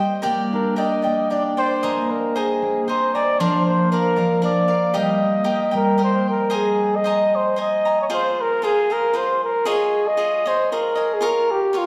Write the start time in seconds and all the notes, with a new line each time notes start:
Already playing: G3 A#3 C4 D#4 C5 D#5 G5
0.22 A#3 G4 A#4 D5 G5
0.53 D4 A#4
0.76 G4 A#4 D5 D#5 G5
1.02 A#3 G4 D5 G5
1.30 D4 G4 A#4 D5 G5
1.57 G4 C5 D5 G5
1.83 A#3 C5 D#5 G#5 A#5
2.10 C4 A#4
2.35 G#4 C5 D#5 G#5 A#5
2.62 A#3
2.87 C4 C5 D#5 G#5 A#5
3.14 C5 D5 D#5 G#5 A#5
3.39 F3 D4 A#4 C5 D5 F5
3.65 A#3 C5
3.92 D4 A#4 D5 F5
4.16 F3 A#4 D5 F5
4.42 A#3 D4 A#4 D5 F5
4.68 A#4 D5 F5
4.94 G3 G4 A#4 D#5 G5
5.23 A#3
5.44 G4 A#4 D#5 G5
5.71 G3 A#4 D#5 G5
5.76 A#4
5.98 A#3 G4 A#4 D#5 G5
6.04 C5
6.28 A#4 G5
6.50 C5 D#5 G#5 A#5
6.55 G#4
6.96 D#5
7.04 C5 D#5 G#5 A#5
7.36 C5
7.56 C5 D#5 G#5 A#5
7.60 D#5
7.85 D#5 G#5 A#5
8.01 C#5
8.10 F4 G#4 C5 F5
8.14 C5
8.41 A#4
8.62 F4 G#4 C5 F5
8.90 G#4 A#4 C5 F5
9.13 F4 G#4 C5 F5
9.44 A#4
9.65 F4 G#4 C#5 D#5
10.08 D#5
10.17 F4 G#4 C#5 D#5
10.46 G#4 C5 C#5 D#5
10.72 F4 G#4 A#4 C#5 D#5
10.95 G#4 C#5 D#5
11.14 G#4
11.21 F4 A#4 C#5 F5
11.26 A#4
11.51 G4
11.73 F4 A#4 C#5 F5
11.78 F4